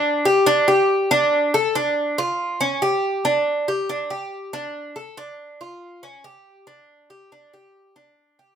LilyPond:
\new Staff \with { instrumentName = "Cuban tres" } { \time 4/4 \key g \dorian \tempo 4 = 140 d'8 g'8 d'8 g'4 d'4 a'8 | d'4 f'4 cis'8 g'4 d'8~ | d'8 g'8 d'8 g'4 d'4 a'8 | d'4 f'4 cis'8 g'4 d'8~ |
d'8 g'8 d'8 g'4 d'4 g'8 | }